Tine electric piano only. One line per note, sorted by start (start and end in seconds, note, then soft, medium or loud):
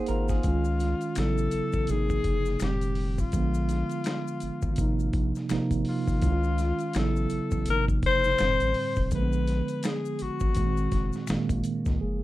0.00 0.32 A#3 medium
0.00 0.33 D#4 medium
0.00 0.34 G#4 medium
0.00 0.34 C5 medium
0.44 1.17 D#3 medium
0.44 1.17 G#3 medium
0.44 1.18 C#4 medium
0.44 1.18 F4 medium
1.16 1.77 C#3 medium
1.16 1.77 F#3 medium
1.16 1.78 B3 medium
1.16 1.79 E4 medium
1.88 2.49 C3 medium
1.88 2.49 F3 medium
1.88 2.50 A#3 medium
1.92 2.51 D#4 medium
2.61 2.68 G#2 soft
2.61 3.20 D3 medium
2.61 3.20 G3 medium
2.65 3.22 A2 medium
2.65 3.21 C4 medium
3.33 4.44 D3 medium
3.33 4.44 F3 medium
3.33 4.45 G#3 medium
3.33 4.45 B3 medium
4.77 5.38 C3 medium
4.77 5.39 F3 medium
4.77 5.39 A#3 medium
4.77 5.40 D#4 medium
5.49 6.08 C3 medium
5.49 6.08 F3 medium
5.49 6.09 A#3 medium
5.49 6.10 D#4 medium
6.22 6.94 D#3 medium
6.22 6.95 G#3 medium
6.22 6.96 C#4 medium
6.22 6.32 E4 medium
6.32 7.00 F4 medium
6.95 7.55 C#3 medium
6.95 7.56 F#3 medium
6.95 7.56 B3 medium
6.95 7.57 E4 medium
7.67 7.75 B2 medium
7.67 8.28 F3 medium
7.67 8.29 A#3 medium
7.71 8.30 C3 medium
7.71 8.29 D#4 medium
8.39 8.47 G2 medium
8.39 8.98 D3 medium
8.39 8.99 G3 medium
8.43 9.01 A2 medium
8.43 8.99 C4 medium
9.12 10.22 D3 medium
9.12 10.23 F3 medium
9.12 10.24 G#3 medium
9.16 9.21 A#3 medium
9.22 10.28 B3 medium
10.56 11.16 A#2 medium
10.56 11.17 D#3 medium
10.56 11.18 G#3 medium
10.56 10.66 A#3 medium
10.67 11.22 C4 medium
11.28 11.86 A#2 medium
11.28 11.87 D#3 medium
11.28 11.88 G#3 medium
11.28 11.88 A#3 medium
12.01 12.23 F3 soft
12.01 12.23 G#3 soft
12.01 12.23 A#3 medium
12.01 12.23 G#4 medium